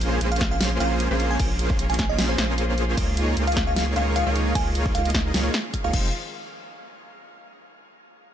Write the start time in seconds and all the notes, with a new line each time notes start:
Already playing: A#1 G#3 A#3 C#4 F4 G#4 C5
0.01 closed hi-hat
0.21 A#1 A#3 C#4 F4 G#4 C5, closed hi-hat
0.32 F5, closed hi-hat
0.36 closed hi-hat
0.41 F5, kick, snare, closed hi-hat
0.51 F5
0.61 F5, snare, closed hi-hat
0.80 A#1 A#3 C#4 F4 G#4 C5 F5, closed hi-hat
1.00 closed hi-hat
1.11 A#1 A#3 C#4 F4 G#4 C5
1.20 closed hi-hat
1.31 G#5
1.40 A#1 A#3 C#4 F4 G#4 C5, kick, closed hi-hat, crash
1.59 closed hi-hat
1.70 kick
1.79 A#1 A#3 C#4 F4 G#4 C#5, closed hi-hat
1.90 G#5, closed hi-hat
1.94 closed hi-hat
1.99 G#5, kick, snare, closed hi-hat
2.09 D#5
2.19 A#1 A#3 C#4 F4 G#4 C5, snare, closed hi-hat
2.29 C5
2.38 A#1 A#3 C#4 F4 G#4 C5, snare, closed hi-hat
2.58 closed hi-hat
2.78 closed hi-hat
2.97 C#2 D#3 G#3 A#3 D#4 F4 C#5, kick, closed hi-hat, crash
3.17 closed hi-hat
3.37 C#2 A#3 D#4 F4 G#4 C#5, closed hi-hat
3.47 F5, closed hi-hat
3.52 closed hi-hat
3.57 F5, kick, snare, closed hi-hat
3.67 F5
3.76 F5, snare, closed hi-hat
3.96 C#2 A#3 D#4 F4 G#4 C#5 F5, closed hi-hat
4.16 F5, closed hi-hat
4.26 C#2 A#3 D#4 F4 G#4 C#5
4.36 closed hi-hat
4.55 C#2 A#3 D#4 F4 G#4 C#5 G#5, kick, closed hi-hat, crash
4.75 closed hi-hat
4.86 kick
4.95 C#2 A#3 D#4 F4 G#4 D#5 F5, closed hi-hat
5.05 closed hi-hat
5.10 closed hi-hat
5.14 kick, snare, closed hi-hat
5.34 C#2 A#3 D#4 F4 G#4 C#5, snare, closed hi-hat
5.54 snare, closed hi-hat
5.74 kick, closed hi-hat
5.84 C#2 A#3 D#4 F4 G#4 C#5 F5
5.93 F1 D#3 F3 G#3 C4 D#4 F4 C5, kick, crash